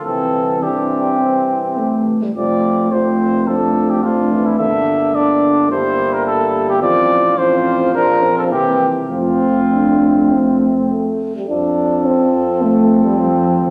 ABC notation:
X:1
M:4/4
L:1/16
Q:1/4=106
K:F
V:1 name="Trumpet"
A4 G8- G2 z2 | d4 c4 A3 G F3 E | e4 d4 c3 B A3 G | d4 c4 B3 A G3 z |
F12 z4 | A16 |]
V:2 name="Flugelhorn"
C4 C8- C2 z2 | C4 C4 D4 D4 | D4 D4 E8 | F4 F4 F4 C2 z2 |
C12- C2 z2 | z8 C8 |]
V:3 name="French horn"
C4 D4 C4 A,3 G, | A,4 A,4 A,4 A,4 | B,4 B,4 B,8 | C4 C4 D2 C2 B,2 z2 |
A,12- A,2 z2 | D4 C4 A,3 G, F,3 F, |]
V:4 name="Euphonium" clef=bass
E,4 E,8- E,2 z2 | F,4 F,4 F,4 F,2 E,2 | D,4 D,4 G,8 | F,4 F,4 F,4 E,2 z2 |
F,4 D4 C4 A,3 G, | F,16 |]
V:5 name="Tuba" clef=bass
C,,12- C,,2 z2 | F,,,16 | G,,,16 | A,,,8 B,,,4 C,,2 z2 |
F,,12- F,,2 z2 | F,,16 |]